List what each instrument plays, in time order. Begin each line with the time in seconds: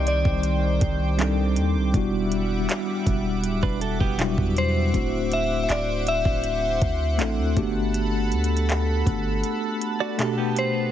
Already playing: 808-style bass C2, analog synth pad D#3 C5 G5 D6, tine electric piano G3 C4 D#4 G4
0.07 synth bell D5, closed hi-hat
0.25 808-style bass C2, kick
0.43 closed hi-hat
0.81 808-style bass C2, kick, closed hi-hat
1.17 tine electric piano G3 C4 D4 D#4 A4, clap, closed hi-hat
1.56 808-style bass D#2, closed hi-hat
1.76 808-style bass C2
1.93 808-style bass E1, tine electric piano G3 B3 D4 E4 F#4, analog synth pad G3 E5 F#5, kick, closed hi-hat
2.32 closed hi-hat
2.69 clap, closed hi-hat
3.06 808-style bass E1, kick, closed hi-hat
3.44 808-style bass D1, closed hi-hat
3.63 808-style bass E1, clean electric guitar D4 B4, kick
3.81 clean electric guitar A4, closed hi-hat
4.00 808-style bass E1, clean electric guitar B3 G4, kick
4.18 tine electric piano B2 F#3 D4 E4 F#4, clap, closed hi-hat
4.24 tine electric piano G3
4.38 808-style bass E2, kick
4.57 synth bell C5, closed hi-hat
4.93 808-style bass D1, tine electric piano A3 C4 D4 E4 F#4, analog synth pad C5, kick, closed hi-hat
5.32 synth bell E5, closed hi-hat
5.64 synth bell E5
5.69 808-style bass D1, synth bell D5, clap, closed hi-hat
6.07 synth bell E5, closed hi-hat
6.25 808-style bass D1, kick
6.44 closed hi-hat
6.82 808-style bass D2, kick, closed hi-hat
7.18 808-style bass A1, tine electric piano A3 C4 D4 E4 A4, clap, closed hi-hat
7.38 808-style bass D2
7.55 808-style bass G1, tine electric piano A3 A#3 D4 F#4 G4, analog synth pad A4 A5 B5, kick, closed hi-hat
7.62 tine electric piano B3
7.94 closed hi-hat
8.32 808-style bass D2, closed hi-hat
8.44 closed hi-hat
8.57 closed hi-hat
8.69 clap, closed hi-hat
9.07 808-style bass G1, kick, closed hi-hat
9.44 closed hi-hat
9.81 closed hi-hat
10.00 clean electric guitar F#4 D5
10.18 tine electric piano B2 A3 D4 F#4 G4, clean electric guitar A4, clap, closed hi-hat
10.38 clean electric guitar B3 G4
10.56 synth bell C5, closed hi-hat